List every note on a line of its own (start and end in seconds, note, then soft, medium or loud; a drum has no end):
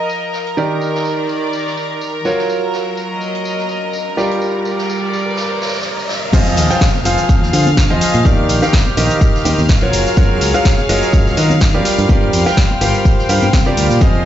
0.00 0.55 F3 medium
0.00 0.55 F4 medium
0.00 0.55 G#4 medium
0.00 6.34 A#4 medium
0.00 8.93 A#4 medium
0.00 0.55 C5 medium
0.00 0.55 D#5 medium
0.00 0.57 D#5 medium
0.00 6.34 A#5 medium
0.09 tambourine medium
0.33 snare medium
0.33 tambourine medium
0.47 closed hi-hat soft
0.57 2.23 D#3 medium
0.57 2.25 D#3 medium
0.57 2.23 D#4 medium
0.57 2.23 G4 medium
0.57 2.23 A#4 medium
0.57 2.23 D5 medium
0.57 tambourine medium
0.81 tambourine medium
0.87 2.25 D5 medium
0.95 snare medium
1.05 tambourine medium
1.29 tambourine medium
1.53 tambourine medium
1.67 snare soft
1.77 tambourine medium
2.01 tambourine medium
2.25 4.15 F#3 medium
2.25 4.17 F#3 medium
2.25 4.15 F4 medium
2.25 4.15 F#4 medium
2.25 4.15 A#4 medium
2.25 4.15 C#5 medium
2.25 tambourine medium
2.39 snare soft
2.49 tambourine medium
2.49 riser medium
2.73 snare soft
2.73 tambourine medium
2.97 tambourine medium
3.12 4.17 D#5 medium
3.21 tambourine medium
3.35 closed hi-hat soft
3.45 tambourine medium
3.58 snare soft
3.69 tambourine medium
3.93 tambourine medium
4.17 6.33 G3 medium
4.17 6.31 G3 medium
4.17 6.31 F4 medium
4.17 6.31 G4 medium
4.17 6.31 A#4 medium
4.17 6.31 D5 medium
4.17 snare soft
4.17 tambourine medium
4.31 closed hi-hat soft
4.42 tambourine medium
4.46 6.33 D5 medium
4.65 tambourine medium
4.78 snare soft
4.90 tambourine medium
5.13 tambourine medium
5.37 snare medium
5.37 tambourine medium
5.62 snare medium
5.62 tambourine medium
5.67 snare medium
5.67 tambourine medium
5.74 snare medium
5.74 tambourine medium
5.80 snare medium
5.80 tambourine medium
5.99 tambourine medium
6.09 snare loud
6.09 tambourine medium
6.33 6.53 F2 loud
6.33 6.67 F3 medium
6.33 6.67 F4 medium
6.33 6.67 G#4 medium
6.33 6.67 C5 medium
6.33 6.67 D#5 loud
6.33 14.00 F5 medium
6.33 14.00 F6 medium
6.33 kick loud
6.33 tambourine medium
6.33 tambourine soft
6.33 crash loud
6.33 downlifter medium
6.33 high conga loud
6.33 shaker soft
6.57 6.68 D#2 loud
6.57 snare soft
6.57 open hi-hat loud
6.57 tambourine medium
6.57 shaker medium
6.70 6.83 F3 medium
6.70 6.83 F4 medium
6.70 6.83 G#4 medium
6.70 6.83 C5 medium
6.70 6.83 G5 loud
6.70 tambourine soft
6.70 shaker soft
6.81 kick loud
6.81 snare loud
6.81 tambourine medium
6.81 tambourine soft
6.81 shaker soft
6.95 8.93 F5 medium
6.95 high conga medium
7.05 7.16 F1 medium
7.05 7.51 F3 medium
7.05 7.51 F4 medium
7.05 7.51 G#4 medium
7.05 7.51 C5 medium
7.05 7.51 F5 medium
7.05 open hi-hat loud
7.05 tambourine loud
7.05 tambourine medium
7.05 shaker medium
7.18 closed hi-hat soft
7.18 tambourine medium
7.18 shaker soft
7.29 7.42 F2 medium
7.29 kick loud
7.29 tambourine medium
7.29 tambourine soft
7.29 shaker soft
7.42 7.51 D#2 loud
7.42 snare soft
7.53 7.92 D3 loud
7.53 7.67 F3 medium
7.53 7.67 F4 medium
7.53 7.67 G#4 medium
7.53 7.67 C5 medium
7.53 7.67 F5 medium
7.53 open hi-hat loud
7.53 tambourine medium
7.53 shaker medium
7.66 tambourine soft
7.66 high conga loud
7.66 shaker soft
7.77 kick loud
7.77 snare loud
7.77 tambourine medium
7.77 shaker soft
7.90 7.99 F2 medium
7.90 8.23 F3 medium
7.90 8.23 F4 medium
7.90 8.23 G#4 medium
7.90 8.23 C5 medium
7.90 8.23 D#5 loud
8.01 snare medium
8.01 open hi-hat loud
8.01 tambourine medium
8.01 shaker medium
8.14 8.23 A#2 loud
8.14 closed hi-hat soft
8.14 tambourine medium
8.14 shaker soft
8.25 8.45 D#2 loud
8.25 8.59 D#3 medium
8.25 8.59 D#4 medium
8.25 8.59 G4 medium
8.25 9.93 G4 medium
8.25 8.59 A#4 medium
8.25 8.59 D5 loud
8.25 kick loud
8.25 tambourine soft
8.25 tambourine medium
8.25 high conga medium
8.25 shaker soft
8.49 8.60 A#1 medium
8.49 open hi-hat loud
8.49 tambourine medium
8.49 shaker medium
8.62 8.74 D#3 loud
8.62 8.75 D#4 medium
8.62 8.74 G4 medium
8.62 8.74 A#4 medium
8.62 8.75 F5 loud
8.62 snare medium
8.62 tambourine medium
8.62 shaker soft
8.72 9.93 C5 medium
8.72 kick loud
8.72 snare loud
8.72 tambourine soft
8.72 tambourine medium
8.72 shaker soft
8.86 high conga medium
8.97 9.08 A#1 loud
8.97 9.43 D#3 medium
8.97 9.43 D#4 medium
8.97 9.43 G4 medium
8.97 9.43 A#4 medium
8.97 9.43 D#5 medium
8.97 14.25 F5 medium
8.97 open hi-hat loud
8.97 tambourine medium
8.97 tambourine loud
8.97 shaker medium
9.10 tambourine medium
9.10 shaker soft
9.21 kick loud
9.21 tambourine medium
9.21 tambourine soft
9.21 shaker soft
9.35 snare soft
9.45 9.56 D#2 loud
9.45 9.59 D#3 medium
9.45 9.59 D#4 medium
9.45 9.59 G4 medium
9.45 9.59 A#4 medium
9.45 9.59 D#5 medium
9.45 open hi-hat loud
9.45 tambourine medium
9.45 tambourine loud
9.45 shaker medium
9.58 9.67 D#2 medium
9.58 tambourine medium
9.58 high conga medium
9.58 shaker soft
9.69 9.80 A#1 loud
9.69 kick loud
9.69 snare loud
9.69 tambourine medium
9.69 shaker soft
9.82 9.91 A#1 medium
9.82 10.15 F#3 medium
9.82 10.15 F4 medium
9.82 10.15 F#4 medium
9.82 10.15 A#4 medium
9.82 10.15 C#5 loud
9.93 10.04 F#1 medium
9.93 11.85 G#4 medium
9.93 open hi-hat loud
9.93 tambourine medium
9.93 tambourine loud
9.93 shaker medium
10.03 11.85 C#5 medium
10.03 snare soft
10.03 tambourine medium
10.03 shaker soft
10.17 10.37 F#2 loud
10.17 10.51 F#3 medium
10.17 10.51 F4 medium
10.17 10.51 F#4 medium
10.17 10.51 A#4 medium
10.17 10.51 C#5 loud
10.17 kick loud
10.17 tambourine medium
10.17 tambourine soft
10.17 high conga medium
10.17 shaker soft
10.41 10.52 C#2 medium
10.41 snare soft
10.41 open hi-hat loud
10.41 tambourine loud
10.41 tambourine medium
10.41 shaker medium
10.54 10.67 F#3 loud
10.54 10.66 F4 medium
10.54 10.66 F#4 medium
10.54 10.66 A#4 medium
10.54 10.66 F5 loud
10.54 tambourine medium
10.54 shaker soft
10.65 kick loud
10.65 snare loud
10.65 tambourine soft
10.65 tambourine medium
10.65 shaker soft
10.78 high conga medium
10.89 11.00 F#1 medium
10.89 11.35 F#3 medium
10.89 11.35 F4 medium
10.89 11.35 F#4 medium
10.89 11.35 A#4 medium
10.89 11.35 D#5 medium
10.89 open hi-hat loud
10.89 tambourine medium
10.89 shaker medium
11.02 closed hi-hat soft
11.02 tambourine medium
11.02 shaker soft
11.13 11.28 F#2 medium
11.13 kick loud
11.13 tambourine medium
11.13 shaker soft
11.26 11.35 C#2 loud
11.26 snare soft
11.37 11.76 D#3 loud
11.37 11.51 F#3 medium
11.37 11.51 F4 medium
11.37 11.51 F#4 medium
11.37 11.51 A#4 medium
11.37 11.51 D#5 medium
11.37 open hi-hat loud
11.37 tambourine loud
11.37 tambourine medium
11.37 shaker medium
11.50 tambourine medium
11.50 high conga loud
11.50 shaker soft
11.60 kick loud
11.60 snare loud
11.60 tambourine medium
11.60 tambourine soft
11.60 shaker soft
11.74 11.83 F#2 medium
11.74 12.07 G3 medium
11.74 12.07 F4 medium
11.74 12.07 G4 medium
11.74 12.07 A#4 medium
11.74 12.07 D5 loud
11.85 14.25 G5 medium
11.85 snare medium
11.85 open hi-hat loud
11.85 tambourine loud
11.85 tambourine medium
11.85 shaker medium
11.98 12.07 G2 loud
11.98 14.25 C5 medium
11.98 closed hi-hat soft
11.98 tambourine medium
11.98 shaker soft
12.09 12.29 G2 loud
12.09 12.43 G3 medium
12.09 12.43 F4 medium
12.09 12.43 G4 medium
12.09 12.43 A#4 medium
12.09 12.43 D5 loud
12.09 kick loud
12.09 tambourine soft
12.09 tambourine medium
12.09 high conga medium
12.09 shaker soft
12.33 12.44 F2 medium
12.33 open hi-hat loud
12.33 tambourine medium
12.33 tambourine loud
12.33 shaker medium
12.46 12.59 G3 loud
12.46 12.59 F4 medium
12.46 12.59 G4 medium
12.46 12.59 A#4 medium
12.46 12.59 G5 loud
12.46 snare medium
12.46 tambourine medium
12.46 shaker soft
12.57 kick loud
12.57 snare loud
12.57 tambourine medium
12.57 shaker soft
12.71 high conga medium
12.81 12.92 G1 medium
12.81 13.27 G3 medium
12.81 13.27 F4 medium
12.81 13.27 G4 medium
12.81 13.27 A#4 medium
12.81 13.27 F5 medium
12.81 open hi-hat loud
12.81 tambourine medium
12.81 tambourine loud
12.81 shaker medium
12.95 tambourine medium
12.95 shaker soft
13.05 kick loud
13.05 tambourine medium
13.05 tambourine soft
13.05 shaker soft
13.19 snare soft
13.29 13.40 G2 medium
13.29 13.43 G3 medium
13.29 13.43 F4 medium
13.29 13.43 G4 medium
13.29 13.43 A#4 medium
13.29 13.43 F5 medium
13.29 open hi-hat loud
13.29 tambourine loud
13.29 tambourine medium
13.29 shaker medium
13.42 13.51 G2 medium
13.42 tambourine medium
13.42 high conga medium
13.42 shaker soft
13.53 13.73 C3 loud
13.53 kick loud
13.53 snare loud
13.53 tambourine soft
13.53 tambourine medium
13.53 shaker soft
13.66 13.99 G3 medium
13.66 13.99 F4 medium
13.66 13.99 G4 medium
13.66 13.99 A#4 medium
13.66 13.99 D5 loud
13.77 13.88 D2 loud
13.77 open hi-hat loud
13.77 tambourine medium
13.77 shaker medium
13.90 13.99 A#2 medium
13.90 snare soft
13.90 tambourine medium
13.90 shaker soft
14.01 14.21 F2 loud
14.01 14.25 F3 medium
14.01 14.25 F4 medium
14.01 14.25 G#4 medium
14.01 14.25 C5 medium
14.01 14.25 D#5 loud
14.01 14.25 F5 medium
14.01 14.25 F6 medium
14.01 kick loud
14.01 ride medium
14.01 tambourine medium
14.01 tambourine soft
14.01 high conga medium
14.01 shaker soft
14.21 14.25 A#4 medium